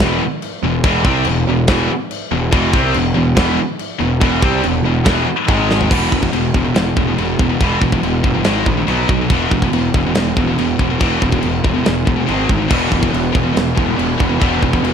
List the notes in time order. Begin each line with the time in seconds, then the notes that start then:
0.00 E1 E2 B2 E3, snare
0.42 china
0.63 E1 E2 B2
0.84 E1 E2 B2 E3, kick, china
1.05 C2 C3 G3 C4, kick
1.25 E1 E2 B2, china
1.47 E1 E2 B2
1.67 E1 E2 B2 E3, kick, snare, china
2.11 china
2.31 E1 E2 B2
2.51 E1 E2 B2 E3, kick, china
2.73 C2 C3 G3 C4, kick
2.94 E1 E2 B2, china
3.14 E1 E2 B2
3.36 E1 E2 B2 E3, kick, snare, china
3.79 china
3.99 E1 E2 B2
4.21 E1 E2 B2 E3, kick, china
4.41 C2 C3 G3 C4, kick
4.63 E1 E2 B2, china
4.83 E1 E2 B2
5.05 E1 E2 B2 E3, kick, snare, china
5.48 G#1 G#2 D#3 G#3, kick, china
5.71 snare
5.81 floor tom
5.90 E1 E2 B2 E3, kick, crash, china
6.12 E1 E2 B2, kick
6.22 E2 B2, kick
6.33 E1 E2 B2, china
6.54 E1 E2 B2, kick
6.64 E2 B2
6.74 E1 E2 B2, snare, china
6.97 E1 E2 B2, kick
7.07 E2 B2
7.18 E1 E2 B2, china
7.39 E1 E2 B2, kick
7.49 E2 B2
7.60 E1 E2 B2 E3, kick, china
7.81 E1 E2 B2, kick
7.92 E2 B2, kick
8.03 E1 E2 B2, china
8.23 G1 E2 B2, kick
8.34 E2 B2
8.44 G#1 G#2 D#3 G#3, snare, china
8.66 A#1 G#2 D#3, kick
8.77 G#2 D#3
8.87 B1 B2 F#3 B3, china
9.09 B1 B2 F#3, kick
9.21 B2 F#3
9.30 E1 E2 B2 E3, kick, china
9.51 E1 E2 B2, kick
9.62 E2 B2, kick
9.72 E1 E2 B2, china
9.94 E1 E2 B2, kick
10.06 E2 B2
10.15 E1 E2 B2, snare, china
10.37 E1 E2 B2, kick
10.47 E2 B2
10.57 E1 E2 B2, china
10.79 E1 E2 B2, kick
10.90 E2 B2
10.99 E1 E2 B2 E3, kick, china
11.22 E1 E2 B2, kick
11.31 E2 B2, kick
11.41 E1 E2 B2, china
11.64 E1 E2 B2, kick
11.74 E2 B2
11.84 E1 E2 B2, snare, china
12.05 E1 E2 B2, kick
12.16 E2 B2
12.26 G#1 G#2 D#3 G#3, china
12.48 G#1 G#2 D#3, kick
12.58 G#2 D#3
12.68 E1 E2 B2 E3, kick, crash, china
12.89 E1 E2 B2, kick
13.00 E2 B2, kick
13.10 E2 B2
13.14 E1, china
13.32 E1 E2 B2, kick
13.43 E2 B2
13.53 E1 E2 B2, china
13.57 snare
13.75 E1 E2 B2 E3, kick
13.86 E2 B2
13.96 E1 E2 B2, china
14.00 E3
14.18 E1 E2 B2, kick
14.29 E2 B2
14.40 E1 E2 B2 E3, kick, china
14.62 E1 E2 B2, kick
14.73 E2 B2, kick
14.83 E1 E2 B2, china